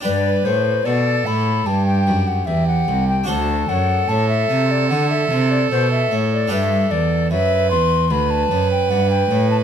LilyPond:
<<
  \new Staff \with { instrumentName = "Flute" } { \time 4/4 \key g \major \tempo 4 = 74 d''8 c''8 d''8 b''8 a''16 g''8 fis''16 e''16 fis''8 g''16 | a''8 fis''8 a''16 e''8 d''16 fis''16 e''8 d''16 c''16 e''8 d''16 | e''8 d''8 e''8 c'''8 b''16 a''8 g''16 fis''16 g''8 a''16 | }
  \new Staff \with { instrumentName = "Violin" } { \time 4/4 \key g \major b'4 a'4 g'4 g'4 | a'1~ | a'4 b'4 b'2 | }
  \new Staff \with { instrumentName = "Harpsichord" } { \time 4/4 \key g \major <d' g' b'>1 | <d' fis' c''>1 | <d' g' b'>1 | }
  \new Staff \with { instrumentName = "Harpsichord" } { \clef bass \time 4/4 \key g \major g,8 a,8 b,8 a,8 g,8 fis,8 e,8 c,8 | d,8 fis,8 a,8 c8 d8 c8 b,8 a,8 | g,8 e,8 fis,8 e,8 d,8 fis,8 g,8 a,8 | }
  \new Staff \with { instrumentName = "Cello" } { \clef bass \time 4/4 \key g \major g,8 a,8 b,8 a,8 g,8 fis,8 e,8 c,8 | d,8 fis,8 a,8 c8 d8 c8 b,8 a,8 | g,8 e,8 fis,8 e,8 d,8 fis,8 g,8 a,8 | }
>>